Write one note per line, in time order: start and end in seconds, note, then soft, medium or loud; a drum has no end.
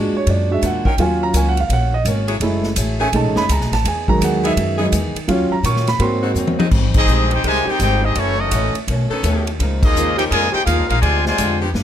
0.00 0.12 G#2 medium
0.00 0.16 A#2 medium
0.00 0.16 G#3 medium
0.00 0.25 G#3 medium
0.00 0.16 D4 medium
0.00 0.25 D4 soft
0.00 0.16 F#4 medium
0.00 0.25 F#4 medium
0.13 0.28 C#5 medium
0.13 muted upright bass stroke soft
0.26 0.61 F#2 medium
0.26 0.51 A#2 soft
0.26 0.51 G#3 medium
0.26 0.52 D4 soft
0.26 0.52 F#4 soft
0.26 0.51 D5 medium
0.26 kick soft
0.26 ride medium
0.51 0.62 G#3 soft
0.51 0.62 D4 soft
0.51 0.62 F#4 soft
0.51 0.63 E5 medium
0.61 0.84 E2 medium
0.61 0.86 A#2 medium
0.61 0.87 G#3 medium
0.61 0.87 D4 medium
0.61 0.87 F#4 medium
0.61 kick soft
0.61 hi-hat pedal medium
0.61 ride medium
0.66 0.87 F#5 medium
0.85 0.94 F#3 loud
0.85 0.94 C#4 medium
0.85 0.94 D#4 medium
0.85 0.94 A#4 loud
0.85 0.98 G5 medium
0.85 muted upright bass stroke soft
0.85 kick medium
0.97 1.33 D#2 medium
0.97 1.22 D#3 soft
0.97 1.54 F#3 medium
0.97 1.23 A#3 soft
0.97 1.23 C#4 medium
0.97 1.55 C#4 soft
0.97 1.55 F4 medium
0.97 1.23 F#4 medium
0.97 kick soft
0.97 ride medium
1.02 1.22 G#5 medium
1.23 1.34 A#5 medium
1.33 1.68 C#2 medium
1.33 1.58 D#3 medium
1.33 1.58 A#3 medium
1.33 1.59 C#4 medium
1.33 1.59 F#4 medium
1.33 1.47 G#5 medium
1.33 kick soft
1.33 hi-hat pedal medium
1.33 ride medium
1.49 1.59 F#5 medium
1.57 1.71 F5 medium
1.57 ride medium
1.69 2.04 A#1 medium
1.69 1.94 D#3 soft
1.69 1.94 A#3 soft
1.69 1.95 C#4 soft
1.69 1.95 F#4 medium
1.69 1.94 F#5 medium
1.69 kick soft
1.69 ride medium
1.94 2.01 D#5 medium
2.05 2.40 G#1 loud
2.05 2.30 D#3 medium
2.05 2.30 A#3 medium
2.05 2.31 C#4 medium
2.05 2.31 F#4 medium
2.05 kick soft
2.05 hi-hat pedal medium
2.05 ride medium
2.28 2.37 F#3 loud
2.28 2.37 A3 medium
2.28 2.37 E4 medium
2.28 2.37 G#4 loud
2.28 ride medium
2.40 2.75 F#1 medium
2.40 2.65 F#3 medium
2.40 2.68 G#3 medium
2.40 2.66 A3 medium
2.40 2.69 A3 soft
2.40 2.66 E4 medium
2.40 2.69 E4 medium
2.40 2.67 G#4 medium
2.40 kick soft
2.40 ride medium
2.63 snare soft
2.76 3.11 A1 medium
2.76 3.01 F#3 medium
2.76 3.02 A3 medium
2.76 3.02 E4 medium
2.76 3.02 G#4 medium
2.76 kick soft
2.76 hi-hat pedal medium
2.76 ride medium
3.00 3.09 D#3 loud
3.00 3.09 A3 loud
3.00 3.08 C#4 loud
3.00 3.09 G#4 loud
3.00 3.13 G#5 medium
3.13 3.24 B1 medium
3.13 3.38 B2 soft
3.13 3.40 G#3 soft
3.13 3.38 A3 soft
3.13 3.40 A3 soft
3.13 3.40 C#4 soft
3.13 3.40 D#4 medium
3.13 3.38 D#4 soft
3.13 3.38 G#4 medium
3.13 3.37 A5 medium
3.13 kick soft
3.13 ride medium
3.24 3.35 A1 medium
3.35 3.47 F#1 medium
3.35 3.45 D#3 medium
3.35 3.45 A3 medium
3.35 3.45 C#4 medium
3.35 3.45 G#4 loud
3.35 3.49 B5 loud
3.35 snare medium
3.49 3.60 C#2 loud
3.49 3.73 B2 medium
3.49 3.74 A3 medium
3.49 3.74 D#4 medium
3.49 3.74 G#4 medium
3.49 3.73 A#5 medium
3.49 kick soft
3.49 hi-hat pedal medium
3.49 ride medium
3.60 3.71 B1 medium
3.60 snare soft
3.72 3.83 A1 medium
3.72 3.85 A5 medium
3.72 snare medium
3.72 ride medium
3.84 4.19 E2 medium
3.84 4.09 E3 medium
3.84 4.09 B3 medium
3.84 4.10 D#4 medium
3.84 4.10 G#4 medium
3.84 4.09 G#5 medium
3.84 kick soft
3.84 ride medium
4.08 5.25 D#3 medium
4.08 4.79 F#3 medium
4.08 4.79 G#3 medium
4.08 4.21 A#5 loud
4.08 kick medium
4.21 4.55 D#2 loud
4.21 4.45 E3 medium
4.21 4.46 B3 medium
4.21 4.46 D#4 medium
4.21 4.46 G#4 medium
4.21 4.45 F#5 medium
4.21 kick soft
4.21 hi-hat pedal medium
4.21 ride medium
4.43 4.52 E3 loud
4.43 4.52 B3 loud
4.43 4.52 D#4 loud
4.43 4.53 G#4 loud
4.43 4.78 E5 medium
4.43 ride medium
4.57 4.91 F#2 loud
4.57 4.81 E3 soft
4.57 4.82 B3 medium
4.57 4.82 D#4 medium
4.57 4.82 G#4 medium
4.57 kick soft
4.57 ride medium
4.78 4.87 E3 loud
4.78 4.91 F#3 soft
4.78 4.92 G#3 soft
4.78 4.87 B3 medium
4.78 4.87 D#4 loud
4.78 4.92 D#4 medium
4.78 4.87 G#4 loud
4.92 5.14 E2 loud
4.92 5.16 E3 medium
4.92 5.17 B3 medium
4.92 5.17 D#4 medium
4.92 5.17 G#4 medium
4.92 kick soft
4.92 hi-hat pedal medium
4.92 ride medium
5.15 muted upright bass stroke soft
5.15 ride medium
5.28 5.50 D#2 loud
5.28 5.53 D#3 medium
5.28 5.55 F#3 medium
5.28 5.53 F#3 medium
5.28 5.55 C#4 medium
5.28 5.54 C#4 medium
5.28 5.55 F4 medium
5.28 5.54 F4 medium
5.28 kick soft
5.28 ride medium
5.50 5.64 A#5 medium
5.50 muted upright bass stroke soft
5.63 5.98 A#2 loud
5.63 5.88 D#3 medium
5.63 5.88 F#3 medium
5.63 5.89 C#4 medium
5.63 5.89 F4 medium
5.63 5.87 C#6 medium
5.63 kick soft
5.63 hi-hat pedal medium
5.63 ride medium
5.76 snare soft
5.87 6.00 B5 medium
5.87 snare medium
5.87 ride medium
5.99 6.34 G#2 loud
5.99 6.24 G#2 soft
5.99 6.25 F#3 medium
5.99 6.56 A#3 medium
5.99 6.56 C4 soft
5.99 6.25 C4 soft
5.99 6.25 D#4 medium
5.99 6.56 F#4 medium
5.99 6.56 C6 medium
5.99 kick soft
5.99 ride medium
6.22 6.31 D#3 medium
6.22 6.32 G#3 medium
6.22 6.31 C4 medium
6.22 6.32 F#4 loud
6.34 6.57 D#2 loud
6.34 6.60 G#2 medium
6.34 6.61 F#3 medium
6.34 6.61 C4 medium
6.34 6.61 D#4 medium
6.34 floor tom medium
6.34 hi-hat pedal medium
6.47 high tom medium
6.58 6.68 D#3 loud
6.58 6.68 G#3 medium
6.58 6.68 C4 medium
6.58 6.68 D#4 loud
6.58 muted upright bass stroke soft
6.58 high tom loud
6.71 7.06 G#1 loud
6.71 6.96 G#2 medium
6.71 6.97 G3 medium
6.71 6.97 C4 medium
6.71 6.98 D#4 medium
6.71 kick medium
6.71 crash medium
6.94 7.28 G#3 medium
6.94 7.28 C4 medium
6.94 7.29 D#4 medium
6.94 7.30 G4 medium
6.94 7.30 G#4 medium
6.94 7.30 D#5 loud
6.94 kick medium
6.94 crash medium
6.98 7.30 C4 medium
7.06 7.42 A#1 medium
7.06 7.32 G#2 medium
7.06 7.24 D#3 medium
7.06 7.33 G3 medium
7.06 7.24 G#3 medium
7.06 7.24 C4 medium
7.06 7.33 C4 medium
7.06 7.33 D#4 medium
7.06 7.24 G4 loud
7.06 hi-hat pedal medium
7.31 7.44 C4 medium
7.31 7.44 D#4 medium
7.31 7.45 D#4 medium
7.31 7.43 G4 medium
7.31 7.45 G#4 medium
7.31 7.45 C5 medium
7.31 7.45 G5 loud
7.31 ride medium
7.43 7.65 C2 medium
7.43 7.68 G#2 soft
7.43 7.65 C3 medium
7.43 7.65 D#3 loud
7.43 7.69 G3 medium
7.43 7.65 G#3 loud
7.43 7.69 C4 soft
7.43 7.66 D#4 medium
7.43 7.66 G4 medium
7.43 7.67 C5 loud
7.43 7.66 G#5 loud
7.43 kick soft
7.43 ride medium
7.47 7.70 D#4 medium
7.66 8.13 D#3 medium
7.66 8.13 G#3 medium
7.66 7.78 C4 medium
7.66 8.13 C4 medium
7.66 7.78 D#4 medium
7.66 7.81 D#4 medium
7.66 7.78 G4 medium
7.66 8.13 G4 loud
7.66 7.81 G#4 medium
7.66 7.81 C5 medium
7.66 7.81 G5 loud
7.66 muted upright bass stroke soft
7.79 8.14 G#1 loud
7.79 8.04 G#2 medium
7.79 8.05 G3 medium
7.79 8.01 C4 medium
7.79 8.05 C4 medium
7.79 8.01 D#4 medium
7.79 8.02 D#4 medium
7.79 8.05 D#4 medium
7.79 8.01 G4 medium
7.79 8.02 G#4 medium
7.79 8.02 C5 medium
7.79 8.02 G5 loud
7.79 kick soft
7.79 hi-hat pedal medium
7.79 ride medium
8.02 8.15 G3 medium
8.02 8.15 C4 medium
8.02 8.16 C4 medium
8.02 8.15 D#4 medium
8.02 8.16 G4 medium
8.02 8.16 G#4 medium
8.02 8.16 D#5 medium
8.15 8.50 F#1 medium
8.15 8.40 F#2 medium
8.15 8.37 E3 medium
8.15 8.41 E3 medium
8.15 8.38 A3 medium
8.15 8.39 A3 medium
8.15 8.41 A3 medium
8.15 8.38 C#4 medium
8.15 8.39 E4 medium
8.15 8.39 F#4 medium
8.15 8.39 C#5 loud
8.15 kick soft
8.15 ride medium
8.19 8.42 C#4 medium
8.38 8.74 E3 medium
8.38 8.75 A3 medium
8.38 8.75 C#4 medium
8.38 8.74 D#4 medium
8.38 8.75 F#4 medium
8.38 8.75 A4 medium
8.38 8.75 D#5 medium
8.51 8.73 A1 medium
8.51 8.77 F#2 medium
8.51 8.67 E3 medium
8.51 8.77 E3 medium
8.51 8.67 A3 medium
8.51 8.77 A3 medium
8.51 8.67 C#4 medium
8.51 8.77 C#4 medium
8.51 8.67 F#4 medium
8.51 kick soft
8.51 hi-hat pedal medium
8.51 ride medium
8.75 ride medium
8.87 9.09 B1 loud
8.87 9.12 B2 medium
8.87 9.12 D#3 medium
8.87 9.13 A3 medium
8.87 9.13 C#4 medium
8.87 kick soft
8.87 ride medium
9.10 9.57 D#3 loud
9.10 9.57 B3 loud
9.10 9.57 C#4 loud
9.10 9.57 A4 loud
9.10 muted upright bass stroke soft
9.23 9.58 D#2 loud
9.23 9.47 B2 medium
9.23 9.48 D#3 medium
9.23 9.48 A3 medium
9.23 9.48 C#4 medium
9.23 kick soft
9.23 hi-hat pedal medium
9.23 ride medium
9.47 ride medium
9.59 9.94 C#2 loud
9.59 9.84 C#3 medium
9.59 9.84 F3 medium
9.59 9.85 A#3 medium
9.59 9.85 D#4 medium
9.59 kick soft
9.59 ride medium
9.82 10.16 G#3 medium
9.82 10.15 A#3 medium
9.82 10.16 A#3 medium
9.82 10.15 D#4 medium
9.82 10.16 F4 medium
9.82 10.16 G#4 medium
9.82 10.16 D#5 loud
9.82 kick medium
9.82 crash medium
9.95 10.30 D#2 loud
9.95 10.20 C#3 medium
9.95 10.20 F3 medium
9.95 10.20 A#3 medium
9.95 10.20 D#4 medium
9.95 hi-hat pedal medium
10.17 10.64 F3 loud
10.17 10.64 C#4 loud
10.17 10.64 D#4 loud
10.17 10.24 D#4 medium
10.17 10.23 G4 medium
10.17 10.24 G#4 medium
10.17 10.64 A#4 loud
10.17 10.24 C5 medium
10.17 10.23 G5 loud
10.17 ride medium
10.29 10.52 F2 loud
10.29 10.51 A#2 loud
10.29 10.56 C#3 medium
10.29 10.52 F3 loud
10.29 10.56 F3 soft
10.29 10.51 G#3 loud
10.29 10.56 A#3 medium
10.29 10.52 F4 loud
10.29 10.52 A#4 loud
10.29 10.52 D#5 loud
10.29 10.52 G#5 loud
10.29 kick soft
10.29 ride medium
10.34 10.57 D#4 medium
10.51 10.64 D#4 medium
10.51 10.64 G4 medium
10.51 10.64 G#4 medium
10.51 10.65 C5 medium
10.51 10.65 G5 loud
10.51 muted upright bass stroke soft
10.64 10.80 D#2 loud
10.64 10.92 C#3 medium
10.64 10.86 G#3 medium
10.64 10.86 A#3 medium
10.64 10.87 D#4 medium
10.64 10.86 F4 medium
10.64 10.87 G#4 medium
10.64 10.87 A#4 medium
10.64 10.87 F5 loud
10.64 kick soft
10.64 hi-hat pedal medium
10.64 ride medium
10.68 10.92 F3 medium
10.68 10.92 A#3 medium
10.68 10.92 D#4 medium
10.78 10.89 C#2 medium
10.87 11.01 A#1 medium
10.87 11.00 G#3 medium
10.87 11.00 A#3 medium
10.87 11.01 D#4 medium
10.87 11.00 F4 medium
10.87 11.01 G#4 medium
10.87 11.01 A#4 medium
10.87 11.01 F5 loud
10.87 ride medium
11.00 11.37 D2 loud
11.00 11.22 C3 medium
11.00 11.27 D3 medium
11.00 11.22 F3 loud
11.00 11.22 G#3 medium
11.00 11.28 G#3 medium
11.00 11.24 F4 medium
11.00 11.23 C5 medium
11.00 11.24 D5 medium
11.00 11.23 G#5 loud
11.00 kick soft
11.00 ride medium
11.05 11.28 C4 medium
11.05 11.28 F4 medium
11.23 11.57 C3 medium
11.23 11.57 F3 medium
11.23 11.57 G#3 medium
11.23 11.59 F4 medium
11.23 11.59 C5 medium
11.23 11.59 D5 medium
11.23 11.59 G#5 loud
11.23 snare soft
11.38 11.73 F2 loud
11.38 11.63 D3 medium
11.38 11.64 G#3 medium
11.38 11.64 C4 medium
11.38 11.64 F4 medium
11.38 kick soft
11.38 hi-hat pedal medium
11.38 ride medium
11.62 11.70 F3 loud
11.62 11.70 B3 medium
11.62 11.71 D4 medium
11.62 11.71 G4 loud
11.74 11.83 G2 medium
11.74 11.83 G3 medium
11.74 11.83 D4 medium
11.74 11.83 F4 medium
11.74 11.83 B4 medium
11.74 snare medium